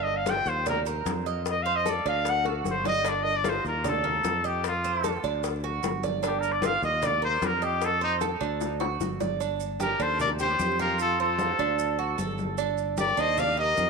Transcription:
Already playing: G1 D4
0.03 D#5, high bongo, high conga
0.17 F5
0.26 F4 G5, high bongo, high conga, maracas
0.46 D#2 C5, high bongo, high conga, maracas
0.66 A#4 D5, high bongo, high conga, low conga, maracas
0.86 A#4, high bongo, high conga, maracas
1.06 F2, high bongo, low bongo, high conga, maracas
1.26 D#5, high conga, maracas
1.46 high bongo, high conga, maracas
1.50 D#5
1.63 C5 F5, high conga
1.76 D#5
1.86 A4 D5, high bongo, high conga, maracas
2.05 D2 D4 F5, high bongo, high conga, maracas
2.25 high bongo, high conga, maracas
2.30 F#5
2.45 F#4 A4, high bongo, high conga
2.64 G1, high bongo, high conga, maracas
2.70 C5
2.84 D5 D#5, low bongo, high conga, maracas
3.05 D4, high bongo, high conga, maracas
3.09 D5
3.23 D#5, high bongo, high conga
3.36 D5
3.44 F4, high bongo, high conga, maracas
3.49 C5
3.64 D#2 A#4, high bongo, high conga, maracas
3.84 A4 D5, high bongo, high conga, low conga, maracas
4.04 A#3, high bongo, high conga, low conga
4.24 F2, high bongo, low bongo, high conga, maracas
4.44 G4 D#5, high conga, maracas
4.64 F4, high bongo, high conga, maracas
4.84 C5, high conga, maracas
5.04 A4, high bongo, high conga, maracas
5.24 D2 D4, high bongo, high conga, maracas
5.44 high bongo, high conga, maracas
5.63 F#4, high bongo, high conga
5.83 G1, high bongo, low bongo, high conga, maracas
6.03 D5, high bongo, high conga, maracas
6.23 D4, high bongo, high conga, maracas
6.27 G4
6.40 A#4, high conga, maracas
6.44 high bongo
6.52 D5
6.62 F4, high bongo, high conga, maracas
6.66 F5
6.82 D#2 D#5, high bongo, high conga, maracas
7.02 D5, high bongo, high conga, low conga, maracas
7.22 A#4 C5, high bongo, high conga
7.42 F2 A#4, high bongo, low bongo, high conga, maracas
7.62 G4 D#5, high conga, maracas
7.82 A4, high bongo, high conga, maracas
8.01 D#4 C5, high conga
8.21 A4, high bongo, high conga, maracas
8.41 D2 D4, high conga, maracas
8.61 low bongo, high conga, maracas
8.80 F#4, low bongo, high conga
9.00 G1, low bongo, high conga, maracas
9.20 D5, low bongo, high conga, maracas
9.40 D4, high conga, maracas
9.60 high conga, maracas
9.80 G4 A#4, high conga, maracas
9.99 D#2 D4 A4 C5, high conga, maracas
10.20 A#4 D5, high conga, low conga, maracas
10.39 G4 C5, high conga, low conga, maracas
10.59 F2, high conga, maracas
10.79 F4 G4 A#4, high conga, maracas
10.99 F4 A4, high conga, maracas
11.19 F4 A4 C5, high conga
11.38 high conga, maracas
11.59 D2 D4, high conga, maracas
11.79 high conga, maracas
11.99 F#4, high conga
12.18 G1 A4, high conga, maracas
12.38 high conga, maracas
12.58 D4, high conga, maracas
12.78 high conga, maracas
12.97 G4 A#4 D5, high conga, maracas
13.17 D#2 D4 C5 D#5, high conga, maracas
13.37 D5 F5, high conga, low conga, maracas
13.57 G4 A#4 D#5, high conga
13.77 F2, high conga, maracas

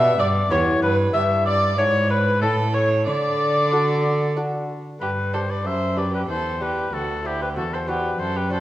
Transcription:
Already playing: B2 B3 D4 G4 E5
0.19 G2 D5
0.50 E2 B3 E4 G4 C#5
0.82 G2 B4
1.13 G2 B3 E4 G4 E5
1.46 D5
1.77 G#2 D4 E4 C#5
2.10 B4
2.41 A2 C#4 E4 A4
2.74 C#5
3.07 D3 D5
3.72 D4 F#4 A4
4.37 D4 F#4 A4
5.01 G2 G4 B4
5.34 D4 G4 A4 C5
5.50 B4 D5
5.64 F#2 C5 E5
5.96 D4 G4 B4 D5
6.13 G4 B4
6.29 E2 A4 C5
6.60 D4 G4 B4
6.93 D2 F#4 A4
7.24 C4 D4 E4 F#4 G4
7.41 G4 B4
7.56 E2 F#4 A4
7.74 A4 C5
7.87 C4 D4 F#4 G4 B4
8.19 F#2 A4 C5
8.37 G4 B4
8.50 C4 D4 F#4 A4 C5

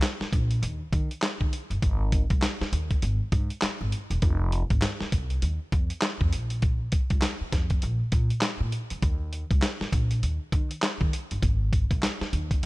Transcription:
0.02 snare, clap, closed hi-hat
0.21 muted upright bass stroke, snare
0.33 A#1, kick, closed hi-hat
0.51 closed hi-hat
0.62 D#2, closed hi-hat
0.93 D#3, kick, closed hi-hat
1.11 closed hi-hat
1.22 snare, clap, closed hi-hat
1.41 D#3, kick
1.53 closed hi-hat
1.70 G1, closed hi-hat
1.82 G#1, kick, closed hi-hat
2.12 kick, closed hi-hat
2.30 C2, kick, closed hi-hat
2.42 snare, clap, closed hi-hat
2.61 muted upright bass stroke, snare
2.72 D#2, closed hi-hat
2.91 kick, closed hi-hat
3.02 G#1, closed hi-hat
3.32 G#2, kick, closed hi-hat
3.50 closed hi-hat
3.62 muted upright bass stroke, snare, clap, closed hi-hat
3.81 G#1
3.92 closed hi-hat
4.10 E1, closed hi-hat
4.22 F1, kick, closed hi-hat
4.52 closed hi-hat
4.70 G#1, kick, closed hi-hat
4.82 snare, clap, closed hi-hat
5.00 muted upright bass stroke, snare
5.12 C2, kick, closed hi-hat
5.30 closed hi-hat
5.42 D#2, closed hi-hat
5.72 F2, kick, closed hi-hat
5.90 closed hi-hat
6.02 snare, clap, closed hi-hat
6.21 F2, kick
6.33 A#1, closed hi-hat
6.50 closed hi-hat
6.62 kick, closed hi-hat
6.92 kick, closed hi-hat
7.10 C#2, kick, closed hi-hat
7.22 snare, clap, closed hi-hat
7.41 muted upright bass stroke
7.52 F2, kick, snare, closed hi-hat
7.70 kick, closed hi-hat
7.82 A#1, closed hi-hat
8.12 A#2, kick, closed hi-hat
8.30 closed hi-hat
8.41 snare, clap, closed hi-hat
8.61 A#2
8.72 closed hi-hat
8.90 D2, closed hi-hat
9.02 D#2, kick, closed hi-hat
9.33 closed hi-hat
9.51 C#2, kick, closed hi-hat
9.62 snare, clap, closed hi-hat
9.81 muted upright bass stroke, snare
9.92 A#1, kick, closed hi-hat
10.11 closed hi-hat
10.23 D#2, closed hi-hat
10.52 D#3, kick, closed hi-hat
10.71 closed hi-hat
10.82 snare, clap, closed hi-hat
11.01 D#3, kick
11.13 closed hi-hat
11.31 G1, closed hi-hat
11.43 G#1, kick, closed hi-hat
11.73 kick, closed hi-hat
11.91 C2, kick, closed hi-hat
12.03 snare, clap, closed hi-hat
12.21 muted upright bass stroke, snare
12.33 D#2, closed hi-hat
12.51 kick, closed hi-hat

